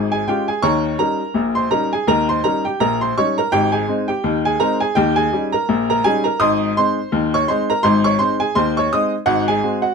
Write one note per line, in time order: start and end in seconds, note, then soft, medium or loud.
0.00 0.22 G#1 medium
0.00 0.22 G#2 medium
0.12 0.27 G#4 medium
0.12 0.28 G#5 medium
0.28 0.47 G#3 medium
0.28 0.48 C#4 soft
0.28 0.48 F4 medium
0.28 0.47 G4 medium
0.28 0.48 G5 medium
0.48 0.63 G#4 medium
0.48 0.64 G#5 medium
0.62 0.94 D#2 medium
0.62 0.94 D#3 medium
0.62 0.97 C#5 medium
0.62 0.97 A#5 medium
0.62 0.97 C#6 loud
0.99 1.19 G3 soft
0.99 1.19 C#4 soft
0.99 1.19 D#4 medium
0.99 1.52 A#4 medium
0.99 1.44 A#5 medium
1.34 1.66 A#1 medium
1.34 1.66 A#2 medium
1.55 1.71 C5 medium
1.55 1.72 C6 medium
1.71 1.91 G3 soft
1.71 1.91 C#4 medium
1.71 1.92 D#4 medium
1.71 1.90 A#4 medium
1.71 1.91 A#5 loud
1.93 2.08 G#4 medium
1.93 2.09 G#5 medium
2.07 2.38 D#2 medium
2.07 2.38 D#3 loud
2.07 2.27 A#4 medium
2.07 2.28 A#5 loud
2.29 2.44 C5 medium
2.29 2.45 C6 medium
2.44 2.64 G3 medium
2.44 2.64 C#4 medium
2.44 2.64 D#4 medium
2.44 2.63 A#4 medium
2.44 2.64 A#5 loud
2.65 2.80 G4 medium
2.65 2.81 G5 medium
2.80 3.11 A#1 medium
2.80 3.11 A#2 medium
2.80 2.99 A#4 medium
2.80 3.00 A#5 loud
3.01 3.17 C5 medium
3.01 3.17 C6 medium
3.18 3.37 G3 medium
3.18 3.38 C#4 medium
3.18 3.38 D#4 medium
3.18 3.36 C#5 medium
3.18 3.37 C#6 loud
3.38 3.53 A#4 medium
3.38 3.53 A#5 medium
3.52 3.83 G#1 medium
3.52 3.83 G#2 loud
3.52 3.71 G4 medium
3.52 3.72 G5 loud
3.72 4.07 G#4 medium
3.72 4.06 G#5 medium
3.88 4.08 G#3 medium
3.88 4.09 C4 medium
3.88 4.09 D#4 medium
4.08 4.42 G4 medium
4.08 4.37 G5 medium
4.24 4.55 D#2 medium
4.24 4.55 D#3 medium
4.45 4.60 G#4 medium
4.45 4.61 G#5 medium
4.60 4.80 G#3 medium
4.60 4.80 C4 medium
4.60 4.80 D#4 medium
4.60 4.79 A#4 medium
4.60 4.80 A#5 loud
4.80 4.96 G#4 medium
4.80 4.97 G#5 medium
4.95 5.27 D#2 loud
4.95 5.27 D#3 medium
4.95 5.15 G4 medium
4.95 5.16 G5 loud
5.16 5.50 G#4 medium
5.16 5.45 G#5 loud
5.33 5.53 G3 medium
5.33 5.53 C#4 medium
5.33 5.53 D#4 medium
5.52 5.87 A#4 medium
5.52 5.87 A#5 medium
5.69 5.99 A#1 medium
5.69 5.99 A#2 medium
5.90 6.05 A#4 medium
5.90 6.05 A#5 loud
6.04 6.25 G3 medium
6.04 6.25 C#4 medium
6.04 6.26 D#4 medium
6.04 6.23 G#4 medium
6.04 6.24 G#5 loud
6.24 6.40 A#4 medium
6.24 6.40 A#5 medium
6.40 6.71 G#1 medium
6.40 6.71 G#2 loud
6.40 6.74 D#5 medium
6.40 6.74 C6 medium
6.40 6.74 D#6 loud
6.77 6.97 G#3 medium
6.77 6.98 C4 medium
6.77 6.98 D#4 medium
6.77 7.30 C5 medium
6.77 7.30 C6 loud
7.12 7.43 D#2 medium
7.12 7.43 D#3 medium
7.34 7.49 C#5 medium
7.34 7.50 C#6 loud
7.48 7.69 G#3 medium
7.48 7.69 C4 medium
7.48 7.69 D#4 medium
7.48 7.68 C5 medium
7.48 7.68 C6 loud
7.70 7.85 A#4 medium
7.70 7.85 A#5 medium
7.83 8.15 G#1 medium
7.83 8.15 G#2 loud
7.83 8.03 C5 medium
7.83 8.04 C6 loud
8.04 8.20 C#5 medium
8.04 8.21 C#6 loud
8.19 8.40 G#3 medium
8.19 8.40 C4 medium
8.19 8.40 D#4 medium
8.19 8.39 C5 medium
8.19 8.40 C6 loud
8.40 8.56 G#4 medium
8.40 8.56 G#5 medium
8.55 8.87 D#2 medium
8.55 8.87 D#3 medium
8.55 8.75 C5 medium
8.55 8.76 C6 loud
8.77 8.93 C#5 medium
8.77 8.93 C#6 medium
8.93 9.13 G#3 medium
8.93 9.13 C4 medium
8.93 9.13 D#4 medium
8.93 9.12 D#5 medium
8.93 9.13 D#6 loud
9.26 9.58 G#1 medium
9.26 9.58 G#2 loud
9.26 9.46 F#4 medium
9.26 9.47 F#5 loud
9.48 9.82 G#4 medium
9.48 9.77 G#5 medium
9.63 9.84 G#3 medium
9.63 9.84 C4 medium
9.63 9.82 F#4 medium
9.82 9.94 F#4 medium
9.82 9.94 F#5 medium